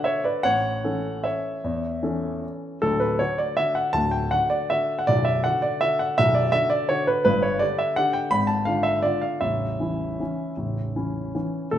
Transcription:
0.00 0.40 D3 soft
0.00 0.40 D4 soft
0.00 0.40 F#4 soft
0.04 0.23 C#5 medium
0.04 0.24 E5 medium
0.24 0.43 B4 medium
0.24 0.44 D5 medium
0.43 0.83 A1 medium
0.43 1.21 C#5 medium
0.43 1.24 F#5 loud
0.84 1.60 E3 soft
0.84 1.60 C#4 soft
0.84 1.60 A4 soft
1.24 2.39 C#5 soft
1.24 2.43 E5 medium
1.64 2.02 E2 medium
2.03 2.78 E3 soft
2.03 2.79 C#4 soft
2.03 2.79 A4 soft
2.82 3.19 D1 medium
2.82 3.19 D2 medium
2.82 3.00 A4 medium
3.00 3.19 B4 medium
3.19 3.54 D3 soft
3.19 3.54 D4 soft
3.19 3.54 F#4 soft
3.19 3.38 C#5 medium
3.38 3.58 D5 medium
3.57 3.91 D3 soft
3.57 3.91 D4 soft
3.57 3.92 F#4 soft
3.57 3.76 E5 medium
3.75 3.94 F#5 medium
3.93 4.30 D1 soft
3.93 4.30 D2 medium
3.93 4.12 A5 loud
4.11 4.31 G5 medium
4.31 4.66 D3 soft
4.31 4.66 D4 soft
4.31 4.66 F#4 soft
4.31 4.50 F#5 medium
4.50 4.69 D5 medium
4.70 5.03 D3 soft
4.70 5.04 D4 soft
4.70 5.04 F#4 soft
4.70 4.98 E5 medium
4.99 5.07 F#5 medium
5.07 5.43 B0 medium
5.07 5.43 B1 medium
5.07 5.25 D5 medium
5.25 5.43 E5 medium
5.44 5.78 D3 soft
5.44 5.79 D4 soft
5.44 5.79 F#4 soft
5.44 5.63 F#5 medium
5.62 5.81 D5 medium
5.81 6.14 D3 soft
5.81 6.14 D4 soft
5.81 6.15 F#4 soft
5.81 6.00 E5 medium
5.99 6.18 F#5 medium
6.18 6.52 B0 medium
6.18 6.52 B1 medium
6.18 6.35 E5 loud
6.35 6.53 D5 medium
6.52 6.85 D3 soft
6.52 6.86 D4 soft
6.52 6.86 F#4 soft
6.52 6.70 E5 loud
6.70 6.89 D5 medium
6.89 7.21 D3 soft
6.89 7.21 D4 soft
6.89 7.22 F#4 soft
6.89 7.07 C#5 medium
7.07 7.23 B4 medium
7.25 7.60 G1 medium
7.25 7.60 G2 medium
7.25 7.42 B4 loud
7.42 7.60 C#5 medium
7.59 7.93 D3 soft
7.59 7.93 D4 soft
7.59 7.94 G4 soft
7.59 7.78 D5 medium
7.78 7.97 E5 medium
7.96 8.29 D3 soft
7.96 8.29 D4 soft
7.96 8.29 G4 soft
7.96 8.15 F#5 loud
8.13 8.31 G5 medium
8.31 8.65 G#1 medium
8.31 8.65 G#2 medium
8.31 8.48 B5 loud
8.47 8.65 A5 medium
8.65 9.00 D3 soft
8.65 9.00 D4 soft
8.65 9.00 F4 soft
8.65 8.84 F5 medium
8.83 9.03 E5 medium
9.03 9.38 D3 soft
9.03 9.38 D4 soft
9.03 9.38 F4 soft
9.03 9.22 D5 medium
9.21 9.41 F5 medium
9.41 9.79 A0 soft
9.41 9.79 A1 medium
9.41 11.34 E5 medium
9.80 10.16 E3 soft
9.80 10.16 C#4 soft
9.80 10.16 E4 soft
10.20 10.54 E3 soft
10.20 10.55 C#4 soft
10.20 10.55 E4 soft
10.57 10.94 A0 soft
10.57 10.94 A1 soft
10.96 11.31 E3 soft
10.96 11.31 C#4 soft
10.96 11.31 E4 soft
11.35 11.69 E3 soft
11.35 11.69 C#4 soft
11.35 11.69 E4 soft
11.71 11.78 D1 soft
11.71 11.78 D2 soft
11.71 11.78 A4 medium

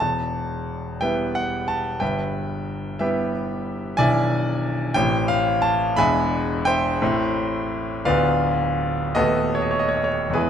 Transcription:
0.00 1.97 E1 medium
0.00 1.97 E2 medium
0.00 1.01 A5 loud
1.01 1.98 G3 medium
1.01 1.98 B3 medium
1.01 1.98 E4 medium
1.01 1.34 B4 medium
1.01 1.33 E5 medium
1.01 1.35 G5 loud
1.35 1.68 F#5 loud
1.68 2.01 A5 medium
2.00 3.94 G1 medium
2.00 3.94 G2 medium
2.00 2.96 B4 medium
2.00 2.97 E5 medium
2.00 3.00 G5 medium
2.99 3.94 G3 medium
2.99 3.95 B3 medium
2.99 3.95 E4 medium
2.99 3.31 G4 medium
2.99 3.31 B4 medium
2.99 3.33 E5 medium
3.97 4.93 B0 medium
3.97 4.93 B1 medium
3.97 4.92 E3 medium
3.97 4.92 D4 medium
3.97 4.93 E4 medium
3.97 4.92 D5 medium
3.97 4.92 E5 medium
3.97 4.95 G#5 loud
4.94 5.95 A1 medium
4.94 5.95 A2 medium
4.94 5.94 E3 medium
4.94 5.94 C4 medium
4.94 5.95 E4 medium
4.94 5.29 G5 loud
5.28 5.63 F5 loud
5.62 5.97 A5 loud
5.96 6.98 E1 medium
5.96 6.98 E2 medium
5.96 6.97 G#3 medium
5.96 6.97 D4 medium
5.96 6.98 E4 medium
5.96 6.63 E5 loud
5.96 6.63 G#5 loud
5.96 6.66 B5 loud
6.65 8.02 C5 medium
6.65 8.02 E5 medium
6.65 8.05 G5 loud
7.01 8.03 A1 medium
7.01 8.03 A2 loud
7.01 8.02 A3 medium
7.01 8.02 C4 medium
7.01 8.03 E4 medium
8.05 9.12 D1 medium
8.05 9.12 D2 medium
8.05 9.11 B3 medium
8.05 9.12 F4 medium
8.05 9.11 B4 medium
8.05 9.11 D5 medium
8.05 9.15 F5 loud
9.15 10.32 D#1 medium
9.15 10.32 D#2 medium
9.15 10.32 A3 medium
9.15 10.31 B3 medium
9.15 10.32 F#4 medium
9.15 9.51 A4 medium
9.15 9.52 B4 medium
9.15 9.54 D#5 loud
9.55 9.63 C#5 medium
9.62 9.71 D#5 medium
9.71 9.80 C#5 medium
9.79 9.88 D#5 medium
9.89 9.97 C#5 medium
9.97 10.06 D#5 medium
10.04 10.34 C#5 medium
10.30 10.50 E2 medium
10.30 10.50 G#3 medium
10.30 10.50 B3 medium
10.30 10.50 B4 medium
10.35 10.50 E4 medium
10.35 10.50 G#4 medium

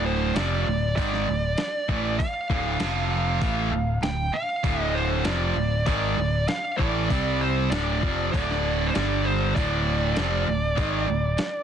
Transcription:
0.00 0.32 D1 medium
0.00 0.35 D2 medium
0.00 0.35 A2 medium
0.00 0.35 D3 loud
0.06 0.36 C5 medium
0.35 0.64 F1 medium
0.35 0.66 F2 medium
0.35 0.66 C3 medium
0.35 0.66 F3 medium
0.35 0.95 D5 medium
0.35 snare loud
0.35 open hi-hat medium
0.67 0.95 D1 medium
0.67 0.92 D2 medium
0.67 0.92 A2 medium
0.96 1.26 G#1 medium
0.96 1.27 G#2 medium
0.96 1.27 D#3 medium
0.96 1.27 G#3 medium
0.96 2.18 D5 medium
0.96 kick medium
0.96 open hi-hat soft
1.13 snare soft
1.28 1.57 D1 medium
1.28 1.53 D2 medium
1.28 1.53 A2 medium
1.58 muted picked electric bass stroke soft
1.58 muted overdriven electric guitar stroke medium
1.58 muted distorted electric guitar stroke medium
1.58 snare loud
1.58 open hi-hat soft
1.88 2.18 A1 medium
1.88 2.19 A2 medium
1.88 2.19 E3 medium
1.88 2.19 A3 medium
1.88 kick loud
2.19 4.09 F5 medium
2.19 muted picked electric bass stroke soft
2.19 muted distorted electric guitar stroke medium
2.19 muted overdriven electric guitar stroke medium
2.19 kick loud
2.19 open hi-hat soft
2.50 2.79 D1 medium
2.50 2.79 D2 medium
2.50 2.79 A2 medium
2.50 2.80 D3 medium
2.50 kick loud
2.80 3.38 F1 medium
2.80 3.41 F2 medium
2.80 3.41 C3 medium
2.80 3.41 F3 medium
2.80 snare loud
2.80 open hi-hat medium
3.41 3.70 A1 medium
3.41 3.71 A2 medium
3.41 3.72 E3 medium
3.41 3.73 A3 medium
3.41 kick medium
3.41 open hi-hat soft
3.71 4.00 D1 medium
3.71 3.97 D2 medium
3.71 3.98 A2 medium
4.01 4.31 D1 medium
4.01 4.28 D2 medium
4.01 4.29 A2 medium
4.01 4.35 G5 medium
4.01 snare medium
4.01 open hi-hat soft
4.33 4.83 F5 loud
4.33 muted picked electric bass stroke soft
4.33 muted overdriven electric guitar stroke medium
4.33 muted distorted electric guitar stroke medium
4.64 5.22 D1 medium
4.64 5.24 D2 medium
4.64 5.25 A2 medium
4.64 5.26 D3 loud
4.64 kick loud
4.64 open hi-hat soft
4.83 4.98 D#5 loud
4.95 5.24 C5 medium
5.25 5.55 F1 medium
5.25 5.56 F2 medium
5.25 5.56 C3 medium
5.25 5.57 F3 medium
5.25 5.85 D5 medium
5.25 snare loud
5.25 open hi-hat soft
5.55 5.85 D1 medium
5.55 5.82 D2 medium
5.55 5.82 A2 medium
5.86 6.16 G#1 medium
5.86 6.17 G#2 medium
5.86 6.17 D#3 medium
5.86 6.17 G#3 medium
5.86 6.48 D5 medium
5.86 kick medium
5.86 open hi-hat soft
6.17 6.46 D1 medium
6.17 6.43 D2 medium
6.17 6.43 A2 medium
6.48 6.77 F5 medium
6.48 muted distorted electric guitar stroke soft
6.48 muted picked electric bass stroke soft
6.48 muted overdriven electric guitar stroke medium
6.48 snare loud
6.48 open hi-hat soft
6.77 7.08 A1 medium
6.77 7.08 A2 medium
6.77 7.09 E3 medium
6.77 7.09 A3 medium
6.77 7.42 D5 medium
6.77 kick loud
7.09 7.68 C2 medium
7.09 7.70 C3 medium
7.09 7.71 G3 medium
7.09 7.71 C4 loud
7.09 kick loud
7.09 open hi-hat soft
7.41 7.70 C5 medium
7.70 8.00 D1 medium
7.70 8.01 D2 medium
7.70 8.01 A2 medium
7.70 8.02 D3 medium
7.70 8.28 D5 medium
7.70 snare loud
7.70 open hi-hat medium
8.02 8.32 F1 medium
8.02 8.31 F2 medium
8.02 8.32 C3 medium
8.02 8.32 F3 medium
8.02 kick loud
8.32 8.91 D1 medium
8.32 8.93 D2 medium
8.32 8.94 A2 medium
8.32 8.94 D3 medium
8.32 8.89 D5 loud
8.32 kick medium
8.32 open hi-hat soft
8.51 snare soft
8.87 8.94 C5 medium
8.94 9.53 G1 medium
8.94 9.54 G2 medium
8.94 9.55 D3 medium
8.94 9.55 G3 medium
8.94 9.26 D5 medium
8.94 snare medium
8.94 open hi-hat soft
9.25 9.57 C5 medium
9.54 10.13 D1 medium
9.54 10.16 D2 medium
9.54 10.16 A2 loud
9.54 10.16 D3 medium
9.54 11.63 D5 medium
9.54 kick loud
9.54 open hi-hat soft
10.16 10.46 F1 medium
10.16 10.46 F2 medium
10.16 10.46 C3 medium
10.16 10.47 F3 medium
10.16 snare loud
10.16 open hi-hat soft
10.46 10.76 D1 medium
10.46 10.71 D2 medium
10.46 10.71 A2 medium
10.75 11.06 G#1 medium
10.75 11.06 G#2 medium
10.75 11.06 D#3 medium
10.75 11.07 G#3 medium
10.75 kick medium
10.75 open hi-hat soft
11.06 11.38 D1 medium
11.06 11.32 D2 medium
11.06 11.32 A2 medium
11.37 muted distorted electric guitar stroke medium
11.37 muted overdriven electric guitar stroke medium
11.37 muted picked electric bass stroke soft
11.37 snare loud
11.37 open hi-hat soft

